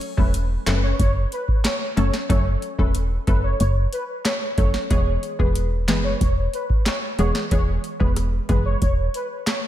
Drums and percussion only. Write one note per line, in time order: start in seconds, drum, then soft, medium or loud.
0.01 closed hi-hat medium
0.18 kick medium
0.34 closed hi-hat medium
0.67 snare loud
0.67 clap loud
0.67 closed hi-hat soft
0.99 kick medium
0.99 closed hi-hat medium
1.32 closed hi-hat medium
1.48 kick loud
1.64 cross-stick medium
1.64 snare loud
1.64 clap medium
1.64 closed hi-hat medium
1.97 closed hi-hat medium
2.13 snare medium
2.30 kick loud
2.30 closed hi-hat medium
2.62 closed hi-hat medium
2.79 kick medium
2.95 closed hi-hat medium
3.27 kick medium
3.27 closed hi-hat soft
3.60 closed hi-hat medium
3.93 closed hi-hat medium
4.25 cross-stick medium
4.25 snare loud
4.25 clap medium
4.25 closed hi-hat medium
4.58 kick loud
4.58 closed hi-hat medium
4.74 snare medium
4.90 kick loud
4.90 closed hi-hat medium
5.23 closed hi-hat medium
5.39 kick medium
5.55 closed hi-hat medium
5.88 snare loud
5.88 clap loud
5.88 closed hi-hat soft
6.21 kick loud
6.21 closed hi-hat medium
6.54 closed hi-hat medium
6.70 kick loud
6.86 cross-stick medium
6.86 snare loud
6.86 clap medium
6.86 closed hi-hat medium
7.19 closed hi-hat medium
7.35 snare medium
7.51 kick loud
7.51 closed hi-hat medium
7.84 closed hi-hat medium
8.00 kick medium
8.16 cross-stick medium
8.16 closed hi-hat medium
8.49 kick medium
8.49 closed hi-hat soft
8.82 kick medium
8.82 closed hi-hat medium
9.14 closed hi-hat medium
9.47 cross-stick medium
9.47 snare loud
9.47 clap medium
9.47 closed hi-hat medium